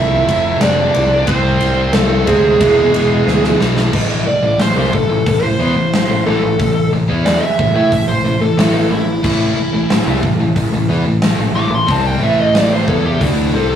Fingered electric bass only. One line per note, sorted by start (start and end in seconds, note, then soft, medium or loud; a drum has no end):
0.00 0.23 C2 loud
0.28 0.56 F1 medium
0.62 0.89 F1 medium
0.96 1.22 C2 medium
1.28 1.55 C2 medium
1.61 1.88 C2 medium
1.94 2.21 C2 medium
2.28 2.55 D2 medium
2.61 2.88 E1 medium
2.93 3.21 E1 medium
3.26 3.53 D2 medium
3.60 3.87 B1 medium
3.94 4.24 A1 medium
4.43 4.58 A1 medium
4.60 4.75 A1 medium
4.76 4.91 C2 loud
4.93 5.09 A1 medium
5.09 5.25 A1 medium
5.27 5.41 A1 medium
5.42 5.58 A1 medium
5.59 5.74 E2 medium
5.76 6.07 A1 medium
6.09 6.24 A1 medium
6.26 6.41 A1 medium
6.43 6.58 A1 medium
6.60 6.90 A1 medium
6.92 7.07 A1 medium
7.09 7.39 E2 loud
7.60 7.74 A1 medium
7.76 7.91 A2 loud
7.92 8.07 A1 medium
8.09 8.23 A1 medium
8.24 8.39 A1 medium
8.41 8.56 A1 medium
8.57 8.88 A1 medium
8.90 9.21 A1 medium
9.24 9.54 A1 loud
9.57 muted fingered electric bass stroke soft
9.72 9.88 A1 medium
9.90 10.05 A1 medium
10.06 10.21 C2 loud
10.24 10.38 A1 medium
10.39 10.54 A1 medium
10.56 10.71 A1 medium
10.72 10.88 A1 medium
10.89 11.04 E2 loud
11.06 11.36 A1 medium
11.38 11.54 A1 medium
11.54 11.69 A1 medium
11.70 11.86 A1 medium
11.89 12.19 C2 medium
12.20 12.83 A1 medium
12.88 13.19 E2 loud
13.21 13.52 D2 loud
13.53 13.76 C2 medium